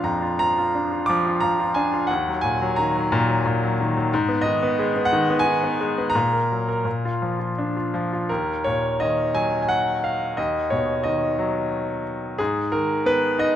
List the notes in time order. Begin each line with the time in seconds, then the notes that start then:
Already playing: F3 D4 F4 F5 A#5 B5
0.03 F2 A#5
0.22 F4
0.39 F3 A#5
0.58 F4
0.75 D4
0.92 F4
1.06 F3 D6
1.26 F4
1.40 F3 A#5
1.60 F4
1.74 D4 G#5
1.93 F4
2.07 D#2 F#5
2.28 F#3
2.41 A#2 G#5
2.61 F#3
2.76 D#3 A#5
2.96 F#3
3.12 A#2
3.29 F#3
3.45 A#2
3.63 F#3
3.81 D#3
3.97 F#3
4.14 G#2
4.29 B3
4.41 D#5
4.46 D#3
4.63 B3
4.79 G#3
4.96 B3
5.05 F#5
5.13 D#3
5.30 B3
5.39 G#5
5.46 D#3
5.64 B3
5.81 G#3
5.98 B3
6.10 A#5
6.15 A#2
6.33 A#4
6.52 F#3
6.68 A#4
6.85 A#2
7.05 F4
7.22 F3
7.39 F4
7.58 D4
7.76 F4
7.94 F3
8.13 F4
8.29 D#2 A#4
8.64 A#2 C#5
9.00 D#3 D#5
9.34 F#3 G#5
9.62 G#5
9.69 F#5
10.04 F5
10.37 D#2 D#5
10.70 B2 C#5
11.03 D#3 D#5
11.39 F#3
12.38 G#2 G#4
12.72 D#3 A#4
13.06 B3 B4
13.38 D#4 D#5